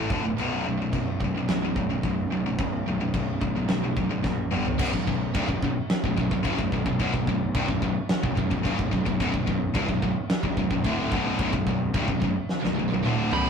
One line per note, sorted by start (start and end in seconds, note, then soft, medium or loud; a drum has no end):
0.00 0.10 A2 medium
0.00 0.10 E3 medium
0.00 0.11 A3 loud
0.10 0.34 D1 medium
0.10 0.23 D2 medium
0.10 0.24 A2 medium
0.10 0.24 D3 loud
0.10 kick loud
0.26 0.39 D2 medium
0.26 0.39 A2 medium
0.38 0.63 B0 medium
0.38 0.65 B1 medium
0.38 0.66 F#2 loud
0.38 0.66 B2 loud
0.38 china medium
0.66 0.90 B0 medium
0.66 0.80 B1 medium
0.66 0.80 F#2 medium
0.77 0.91 F#2 medium
0.82 0.94 B1 medium
0.82 0.94 F#2 medium
0.93 1.41 B0 medium
0.93 1.19 B1 medium
0.93 1.19 F#2 medium
0.93 kick medium
0.93 china medium
1.20 1.34 B1 medium
1.20 1.33 F#2 medium
1.20 kick medium
1.24 1.36 B1 medium
1.24 1.36 F#2 medium
1.37 1.49 B1 medium
1.37 1.49 F#2 medium
1.48 1.96 B0 loud
1.48 1.63 B1 medium
1.48 1.63 F#2 medium
1.48 snare loud
1.48 china medium
1.65 1.76 B1 medium
1.65 1.76 F#2 medium
1.76 1.89 B1 medium
1.76 1.89 F#2 medium
1.76 kick medium
1.90 2.04 B1 medium
1.90 2.04 F#2 medium
2.03 2.28 B0 medium
2.03 2.29 B1 medium
2.03 2.29 F#2 medium
2.03 kick medium
2.03 china medium
2.30 2.55 B0 medium
2.30 2.46 B1 medium
2.30 2.45 F#2 medium
2.46 2.59 B1 medium
2.46 2.59 F#2 medium
2.59 2.83 B0 medium
2.59 2.85 B1 medium
2.59 2.85 F#2 medium
2.59 kick loud
2.59 china medium
2.87 3.11 B0 medium
2.87 3.00 B1 medium
2.87 3.00 F#2 medium
3.01 3.13 B1 medium
3.01 3.13 F#2 medium
3.14 3.38 B0 medium
3.14 3.39 B1 medium
3.14 3.39 F#2 medium
3.14 kick medium
3.14 china medium
3.41 3.66 B0 medium
3.41 3.55 B1 medium
3.41 3.55 F#2 medium
3.41 kick medium
3.56 3.69 B1 medium
3.56 3.69 F#2 medium
3.69 3.93 B0 medium
3.69 3.83 B1 medium
3.69 3.83 F#2 medium
3.69 snare loud
3.69 china medium
3.84 3.97 B1 medium
3.84 3.96 F#2 medium
3.97 4.21 B0 medium
3.97 4.10 B1 medium
3.97 4.09 F#2 medium
3.97 kick medium
4.11 4.22 B1 medium
4.11 4.23 F#2 medium
4.23 4.48 A#1 medium
4.23 4.49 B1 medium
4.23 4.49 F#2 medium
4.23 kick medium
4.23 snare medium
4.51 4.76 G1 medium
4.51 4.64 G2 medium
4.51 4.64 D3 medium
4.51 4.65 G3 medium
4.51 mid tom medium
4.65 4.79 G2 medium
4.65 4.79 D3 medium
4.65 floor tom medium
4.79 4.92 B0 medium
4.79 4.91 B1 loud
4.79 4.92 F#2 loud
4.79 kick loud
4.79 crash loud
4.79 china medium
4.93 5.07 B0 medium
4.93 5.06 B1 medium
4.93 5.07 F#2 medium
4.93 kick medium
5.07 5.33 B0 medium
5.07 5.30 B1 medium
5.07 5.30 F#2 medium
5.07 kick medium
5.34 5.48 C1 medium
5.34 5.48 C2 loud
5.34 5.48 G2 loud
5.34 kick loud
5.34 china medium
5.48 5.62 B0 medium
5.48 5.62 B1 medium
5.48 5.63 F#2 medium
5.48 kick medium
5.62 5.76 B0 medium
5.62 5.77 B1 medium
5.62 5.77 F#2 medium
5.62 kick medium
5.90 snare loud
5.90 china medium
6.03 6.16 B0 medium
6.03 6.15 B1 medium
6.03 6.17 F#2 medium
6.03 kick medium
6.17 6.30 B0 medium
6.17 6.30 B1 medium
6.17 6.30 F#2 medium
6.17 kick medium
6.31 6.44 B0 medium
6.31 6.42 B1 medium
6.31 6.42 F#2 medium
6.31 kick medium
6.43 6.58 F#1 medium
6.43 6.57 F#2 medium
6.43 6.58 C#3 loud
6.43 kick loud
6.43 china medium
6.59 6.72 B0 medium
6.59 6.72 B1 medium
6.59 6.72 F#2 medium
6.59 kick medium
6.72 6.85 B0 medium
6.72 6.85 B1 medium
6.72 6.85 F#2 medium
6.72 kick medium
6.86 6.99 B0 medium
6.86 6.98 B1 medium
6.86 7.00 F#2 medium
6.86 kick medium
6.99 7.13 B0 medium
6.99 7.12 B1 medium
6.99 7.13 F#2 loud
6.99 kick medium
6.99 china medium
7.14 7.26 B0 medium
7.14 7.27 B1 medium
7.14 7.28 F#2 medium
7.14 kick medium
7.27 7.53 B0 medium
7.27 7.50 B1 medium
7.27 7.50 F#2 medium
7.27 kick medium
7.55 7.68 C1 loud
7.55 7.67 C2 loud
7.55 7.68 G2 loud
7.55 kick loud
7.55 china medium
7.68 7.81 B0 medium
7.68 7.81 B1 medium
7.68 7.81 F#2 medium
7.68 kick medium
7.82 7.95 B0 medium
7.82 7.96 B1 medium
7.82 7.96 F#2 medium
7.82 kick medium
8.09 snare loud
8.09 china medium
8.23 8.36 B0 medium
8.23 8.34 B1 medium
8.23 8.35 F#2 medium
8.23 kick medium
8.35 8.50 B0 medium
8.35 8.49 B1 medium
8.35 8.49 F#2 medium
8.35 kick medium
8.50 8.64 B0 medium
8.50 8.63 B1 medium
8.50 8.62 F#2 medium
8.50 kick medium
8.63 8.78 F#1 medium
8.63 8.77 F#2 medium
8.63 8.77 C#3 loud
8.63 kick loud
8.63 china medium
8.78 8.91 B0 medium
8.78 8.91 B1 medium
8.78 8.90 F#2 medium
8.78 kick medium
8.91 9.06 B0 medium
8.91 9.04 B1 medium
8.91 9.05 F#2 medium
8.91 kick medium
9.05 9.19 B0 medium
9.05 9.19 B1 medium
9.05 9.20 F#2 medium
9.05 kick medium
9.20 9.33 B0 medium
9.20 9.32 B1 medium
9.20 9.32 F#2 loud
9.20 kick loud
9.20 china medium
9.33 9.47 B0 medium
9.33 9.45 B1 medium
9.33 9.46 F#2 medium
9.33 kick medium
9.46 9.73 B0 medium
9.46 9.69 B1 medium
9.46 9.69 F#2 medium
9.46 kick medium
9.74 9.88 C1 loud
9.74 9.87 C2 loud
9.74 9.88 G2 loud
9.74 kick loud
9.74 china medium
9.89 10.01 B0 medium
9.89 10.02 B1 medium
9.89 10.02 F#2 medium
9.89 kick medium
10.02 10.15 B0 medium
10.02 10.16 B1 medium
10.02 10.16 F#2 medium
10.02 kick medium
10.30 snare loud
10.30 china medium
10.43 10.56 B0 medium
10.43 10.58 B1 medium
10.43 10.58 F#2 medium
10.43 kick medium
10.57 10.70 B0 medium
10.57 10.71 B1 medium
10.57 10.72 F#2 medium
10.57 kick medium
10.71 10.83 B0 medium
10.71 10.85 B1 medium
10.71 10.86 F#2 medium
10.71 kick medium
10.84 11.10 D1 medium
10.84 11.12 D2 medium
10.84 11.12 A2 loud
10.84 11.13 D3 medium
10.84 kick loud
10.84 china medium
11.12 11.38 B0 loud
11.12 11.39 B1 medium
11.12 11.39 F#2 loud
11.12 11.40 B2 loud
11.12 kick loud
11.39 11.52 B0 loud
11.39 11.53 B1 loud
11.39 11.54 F#2 loud
11.39 kick loud
11.39 china medium
11.53 11.66 B0 medium
11.53 11.68 B1 medium
11.53 11.68 F#2 medium
11.53 kick medium
11.67 11.92 B0 medium
11.67 11.90 B1 medium
11.67 11.90 F#2 medium
11.67 kick medium
11.94 12.07 C1 medium
11.94 12.08 C2 loud
11.94 12.08 G2 loud
11.94 kick loud
11.94 china medium
12.08 12.21 B0 medium
12.08 12.23 B1 medium
12.08 12.23 F#2 medium
12.08 kick medium
12.20 12.35 B0 medium
12.20 12.37 B1 medium
12.20 12.35 F#2 medium
12.20 kick medium
12.24 12.37 F#2 medium
12.49 snare medium
12.61 12.76 B0 medium
12.61 12.74 B1 medium
12.61 12.75 F#2 medium
12.61 snare medium
12.65 12.78 B1 medium
12.65 12.78 F#2 medium
12.75 12.90 B0 medium
12.75 12.88 B1 medium
12.75 12.92 F#2 medium
12.80 12.92 B1 medium
12.89 13.03 B0 medium
12.89 13.02 B1 medium
12.89 13.03 F#2 medium
12.89 high tom medium
12.93 13.05 B1 medium
12.93 13.06 F#2 medium
13.05 13.31 D1 medium
13.05 13.31 D2 medium
13.05 13.32 A2 loud
13.05 13.32 D3 loud
13.05 mid tom medium
13.31 13.50 B0 loud
13.31 13.50 B1 medium
13.31 13.50 F#2 medium
13.31 13.50 B2 loud
13.31 13.50 G4 medium
13.31 13.50 B5 loud
13.31 floor tom loud
13.36 13.50 B2 loud
13.46 floor tom medium